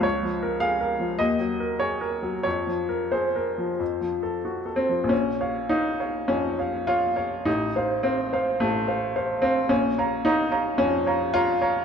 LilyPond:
\new Staff \with { instrumentName = "Upright piano" } { \time 4/4 \key bes \minor \tempo 4 = 103 << { \tuplet 3/2 { des,8 f8 bes'8 aes'8 bes'8 f8 ees,8 ges8 bes'8 aes'8 bes'8 ges8 } | \tuplet 3/2 { f,8 f8 bes'8 aes'8 bes'8 f8 f,8 f8 a'8 ges'8 a'8 f8 } | bes,,8 <des'' f''>8 <des'' f''>8 <des'' f''>8 f,8 <des'' f''>8 <des'' f''>8 <des'' f''>8 | a,,8 <c'' f''>8 <c'' f''>8 <c'' f''>8 a,,8 <c'' f''>8 <c'' f''>8 <c'' f''>8 |
bes,,8 <des'' f'' bes''>8 <des'' f'' bes''>8 <des'' f'' bes''>8 f,8 <des'' f'' bes''>8 <des'' f'' bes''>8 <des'' f'' bes''>8 | } \\ { des''4 f''4 ees''4 des''4 | des''4 c''2 r8 c'8 | des'4 ees'4 des'4 f'4 | ees'4 c'4 a4 r8 c'8 |
des'4 ees'4 des'4 f'4 | } >> }